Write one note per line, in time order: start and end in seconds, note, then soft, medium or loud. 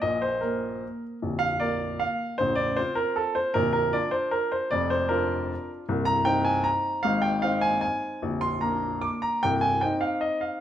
0.02 0.41 A#1 soft
0.02 0.41 A#2 soft
0.02 0.22 D#5 medium
0.22 0.42 C5 medium
0.41 1.18 A#3 soft
0.41 1.02 A#4 medium
1.22 1.60 A#0 soft
1.22 1.60 A#1 soft
1.39 1.59 F5 medium
1.60 2.36 A#3 soft
1.60 2.36 A#4 soft
1.60 2.00 D5 medium
2.00 2.39 F5 medium
2.38 2.76 A0 soft
2.38 2.76 A1 medium
2.38 2.58 C5 medium
2.56 2.76 D5 medium
2.76 3.51 C4 soft
2.76 3.52 F4 soft
2.76 2.96 C5 medium
2.95 3.16 A#4 medium
3.16 3.36 A4 medium
3.35 3.54 C5 medium
3.54 3.92 A#0 soft
3.54 3.92 A#1 medium
3.54 3.71 A#4 medium
3.73 3.93 A#4 medium
3.93 4.69 D4 soft
3.93 4.70 F4 soft
3.93 4.13 D5 medium
4.11 4.32 C5 medium
4.31 4.52 A#4 medium
4.52 4.72 C5 medium
4.71 5.09 F1 soft
4.71 5.10 F2 medium
4.71 4.91 D5 medium
4.90 5.10 C5 medium
5.09 5.85 D4 soft
5.09 5.85 F4 soft
5.09 5.69 A#4 medium
5.89 6.25 C1 soft
5.89 6.25 C2 medium
6.05 6.25 A#5 loud
6.25 7.01 C4 soft
6.25 7.01 D#4 soft
6.25 6.45 G5 medium
6.45 6.65 G#5 medium
6.64 7.04 A#5 medium
7.03 7.42 G#1 medium
7.03 7.42 G#2 soft
7.03 7.23 F5 medium
7.22 7.42 G5 medium
7.42 8.19 C4 soft
7.42 8.19 D#4 soft
7.42 7.62 F5 medium
7.61 7.80 G#5 medium
7.81 8.21 G#5 medium
8.22 8.61 A#0 soft
8.22 8.61 A#1 medium
8.41 8.61 C6 medium
8.61 9.39 A#3 soft
8.61 9.40 D4 soft
8.61 9.03 A#5 medium
9.02 9.23 D6 medium
9.22 9.42 A#5 medium
9.43 9.82 C1 soft
9.43 9.81 C2 soft
9.43 9.62 G5 medium
9.61 9.81 G#5 medium
9.81 10.58 C4 soft
9.81 10.59 D#4 soft
9.81 10.02 G5 medium
10.01 10.22 F5 medium
10.21 10.42 D#5 medium
10.41 10.61 F5 medium